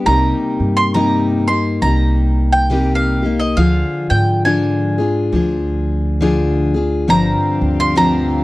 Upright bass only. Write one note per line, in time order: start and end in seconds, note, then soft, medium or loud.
0.07 0.32 C2 medium
0.60 1.78 G2 medium
1.82 3.53 C2 medium
3.57 3.82 D2 medium
4.11 5.29 G#2 medium
5.33 7.04 D2 medium
7.08 7.33 G1 medium
7.61 8.44 D2 medium